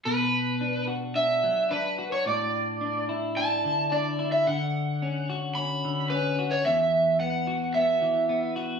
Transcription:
<<
  \new Staff \with { instrumentName = "Electric slide guitar" } { \time 4/4 \key b \minor \tempo 4 = 109 b'4. r8 e''4 b'8. cis''16 | d''4. r8 a''4 d''8. e''16 | fis''4. r8 b''4 b'8. cis''16 | e''4 fis''4 e''4. r8 | }
  \new Staff \with { instrumentName = "Clean electric guitar" } { \time 4/4 \key b \minor b,4 d'8 fis'8 d'8 fis8 d'8 fis'8 | a,4 d'8 e'8 d'8 d8 d'8 e'8 | d4 cis'8 fis'8 cis'8 d8 cis'8 fis'8 | e,4 b8 fis'8 b8 e8 b8 fis'8 | }
>>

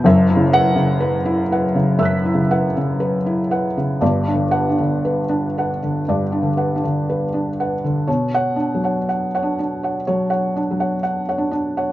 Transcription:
<<
  \new Staff \with { instrumentName = "Felt piano" } { \time 4/4 \key b \minor \tempo 4 = 60 << { r8 fis''16 r4 r16 <e''' fis''' b'''>2 | r8 fis''16 r2. r16 | r16 fis''16 r2. r8 | } \\ { e''16 e'16 b'16 cis16 b'16 e'16 <b' fis''>16 cis16 e''16 e'16 <b' fis''>16 cis16 b'16 e'16 <b' fis''>16 cis16 | d''16 d'16 b'16 d16 b'16 d'16 <b' fis''>16 d16 d''16 d'16 <b' fis''>16 d16 b'16 d'16 <b' fis''>16 d16 | cis''16 cis''16 d'16 <cis'' fis''>16 fis''16 <cis'' fis''>16 d'16 <cis'' fis''>16 cis''16 <cis'' fis''>16 d'16 <cis'' fis''>16 fis''16 <cis'' fis''>16 d'16 <cis'' fis''>16 | } >> }
  \new Staff \with { instrumentName = "Felt piano" } { \clef bass \time 4/4 \key b \minor \tuplet 3/2 { <fis,, fis,>8 cis4 } r4 \tuplet 3/2 { fis,8 cis4 } r4 | \tuplet 3/2 { <g,, g,>8 d8 d'8 } r4 \tuplet 3/2 { g,8 d8 d'8 } r4 | \tuplet 3/2 { b,4 fis8~ fis8 d'4 fis4 fis8~ fis8 d'4 } | }
>>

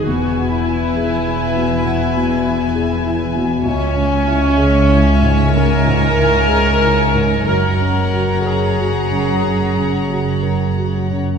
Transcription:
<<
  \new Staff \with { instrumentName = "Violin section" } { \time 4/4 \key ges \lydian \tempo 4 = 63 gis''1 | aes''1 | bes''1 | }
  \new Staff \with { instrumentName = "Violin section" } { \time 4/4 \key ges \lydian <b' e''>1 | <des'' fes''>1 | <des'' ges''>1 | }
  \new Staff \with { instrumentName = "Viola section" } { \time 4/4 \key ges \lydian ges'8 e'2. r8 | des'2 bes'2 | bes'4 aes'2~ aes'8 r8 | }
  \new Staff \with { instrumentName = "Felt piano" } { \time 4/4 \key ges \lydian \tuplet 3/2 { e,8 b8 e'8 gis'8 e'8 b,8 b8 b,8 e'8 gis'8 e'8 b,8 } | \tuplet 3/2 { des,8 des'8 fes'8 aes'8 fes'8 aes,8 des'8 aes,8 fes'8 aes'8 fes'8 aes,8 } | \tuplet 3/2 { ges,8 des'8 ges'8 bes'8 ges'8 des8 des'8 des8 ges'8 bes'8 ges'8 des8 } | }
  \new Staff \with { instrumentName = "Cello section" } { \clef bass \time 4/4 \key ges \lydian e,1 | des,1 | ges,1 | }
  \new Staff \with { instrumentName = "Double bass section" } { \clef bass \time 4/4 \key ges \lydian e,,1 | des,1 | ges,,1 | }
>>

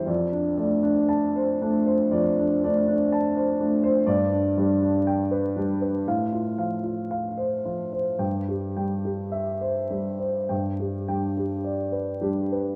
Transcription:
<<
  \new Staff \with { instrumentName = "Grand piano" } { \time 4/4 \key g \mixolydian \tempo 4 = 58 d''16 d'16 d''16 d'16 a''16 c''16 d'16 c''16 d''16 d'16 d''16 d'16 a''16 c''16 d'16 c''16 | d''16 d'16 d''16 d'16 g''16 b'16 d'16 b'16 f''16 f'16 f''16 f'16 f''16 c''16 f'16 c''16 | g''16 g'16 g''16 g'16 e''16 c''16 g'16 c''16 g''16 g'16 g''16 g'16 d''16 b'16 g'16 b'16 | }
  \new Staff \with { instrumentName = "Grand piano" } { \clef bass \time 4/4 \key g \mixolydian f,8 <a d'>4 a8 f,8 <a d'>4 a8 | g,8 <g d'>4 g8 a,8 f4 f8 | g,8 g4 g8 g,8 <g d'>4 <g d'>8 | }
>>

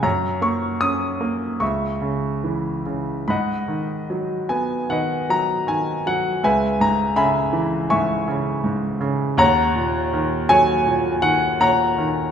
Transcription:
<<
  \new Staff \with { instrumentName = "Grand piano" } { \time 4/4 \key fis \mixolydian \tempo 4 = 78 << { ais''8 cis'''8 dis'''4 cis'''4. r8 | \key gis \minor b''4. gis''8 fis''8 ais''8 gis''8 fis''8 | gis''8 ais''8 b''4 cis'''4. r8 | ais''4. gis''4 fis''8 ais''4 | } \\ { cis''2 e''2 | <dis'' fis''>2 <b' dis''>2 | <b' e''>4 <e'' gis''>4 <e'' gis''>2 | <cis'' fis''>4. cis''4. <cis'' fis''>4 | } >> }
  \new Staff \with { instrumentName = "Grand piano" } { \clef bass \time 4/4 \key fis \mixolydian fis,8 ais8 cis'8 ais8 cis,8 cis8 e8 cis8 | \key gis \minor gis,8 dis8 fis8 b8 dis8 fis8 dis8 fis8 | cis,8 gis,8 cis8 e8 gis,8 cis8 gis,8 cis8 | dis,8 ais,8 dis8 fis8 ais,8 dis8 ais,8 dis8 | }
>>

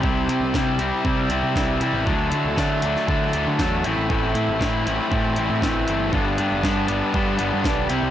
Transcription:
<<
  \new Staff \with { instrumentName = "Distorted electric guitar" } { \time 4/4 \key g \major \tempo 4 = 118 c8 g'8 g8 g'8 g8 e'8 e8 g8 | d8 e'8 a8 e'8 a8 d'8 fis8 a,8 | a,8 e'8 c'8 e'8 c'4 e8 c'8 | g,8 g'8 b8 g'8 b8 d'8 g8 c8 | }
  \new Staff \with { instrumentName = "Overdriven electric guitar" } { \time 4/4 \key g \major <c g c' e'>8 <g c' e'>8 <c g c' e'>8 <c g c' e'>8 <c g c' e'>8 <c g c' e'>8 <c g c' e'>8 <g c' e'>8 | <d fis a d'>8 <fis a d'>8 <d fis a d'>8 <d fis a d'>8 <d fis a d'>8 <d fis a d'>8 <d fis a d'>8 <a, e a c' e'>8 | <a, e a c' e'>8 <a c' e'>8 <e a c' e'>8 <a, e a c' e'>8 <e a c' e'>8 <a, e a c' e'>8 <e a c' e'>8 <a c' e'>8 | <g, d g b d'>8 <g b d'>8 <d g b d'>8 <g, d g b d'>8 <d g b d'>8 <g, d g b d'>8 <d g b d'>8 <c g c' e'>8 | }
  \new Staff \with { instrumentName = "Picked electric bass" } { \clef bass \time 4/4 \key g \major c,8 c16 c,16 c8 c,16 r16 c8 c,16 c16 c,8 c16 a,,16 | d,8 d16 d,16 d8 d,16 r16 d8 d,16 d16 e,8 a,,16 a,,16 | a,,8 a,16 a,,16 a,8 a,,16 r16 a,8 a,,16 a,16 a,,8 g,,8 | g,,8 g,16 g,,16 g,8 g,,16 r16 g,8 g,,16 g,16 b,,8 c,16 c,16 | }
  \new DrumStaff \with { instrumentName = "Drums" } \drummode { \time 4/4 bd8 hh8 <bd sn>8 hh8 bd8 hh8 <bd sn>8 hh8 | bd8 hh8 <bd sn>8 hh16 sn16 bd8 hh8 <bd sn>8 hh8 | bd8 hh8 <bd sn>8 hh8 bd8 hh8 <bd sn>8 hh8 | bd8 hh8 <bd sn>8 hh8 bd8 hh8 <bd sn>8 hh8 | }
>>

